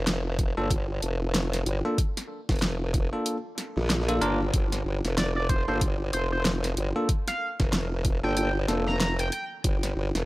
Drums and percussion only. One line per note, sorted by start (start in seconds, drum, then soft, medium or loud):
0.07 snare loud
0.07 closed hi-hat medium
0.39 kick loud
0.39 closed hi-hat medium
0.71 kick loud
0.71 closed hi-hat medium
1.02 closed hi-hat medium
1.34 snare loud
1.34 closed hi-hat medium
1.53 snare soft
1.53 closed hi-hat medium
1.66 closed hi-hat medium
1.98 kick loud
1.98 closed hi-hat medium
2.17 snare soft
2.17 closed hi-hat medium
2.49 kick loud
2.49 snare soft
2.49 closed hi-hat soft
2.52 closed hi-hat soft
2.56 closed hi-hat soft
2.59 snare loud
2.59 closed hi-hat soft
2.62 closed hi-hat medium
2.94 kick loud
2.94 closed hi-hat medium
3.26 closed hi-hat medium
3.58 snare soft
3.58 closed hi-hat medium
3.77 snare soft
3.79 snare soft
3.85 snare soft
3.90 snare loud
3.90 closed hi-hat medium
3.96 snare soft
4.00 snare soft
4.09 closed hi-hat medium
4.22 closed hi-hat medium
4.54 kick loud
4.54 closed hi-hat medium
4.72 snare soft
4.72 closed hi-hat medium
5.05 snare soft
5.05 closed hi-hat soft
5.18 snare loud
5.18 closed hi-hat medium
5.49 kick loud
5.49 closed hi-hat medium
5.81 kick loud
5.81 closed hi-hat medium
6.13 closed hi-hat medium
6.45 snare loud
6.45 closed hi-hat medium
6.64 snare soft
6.64 closed hi-hat medium
6.77 closed hi-hat medium
7.09 kick loud
7.09 closed hi-hat medium
7.28 snare soft
7.28 closed hi-hat medium
7.60 kick loud
7.60 snare soft
7.60 closed hi-hat soft
7.73 snare loud
7.73 closed hi-hat medium
8.05 kick loud
8.05 closed hi-hat medium
8.37 closed hi-hat medium
8.68 snare soft
8.68 closed hi-hat medium
8.87 snare soft
9.00 snare loud
9.00 closed hi-hat medium
9.19 closed hi-hat medium
9.32 closed hi-hat medium
9.64 kick loud
9.64 closed hi-hat medium
9.83 snare soft
9.83 closed hi-hat medium
10.15 snare soft
10.15 closed hi-hat soft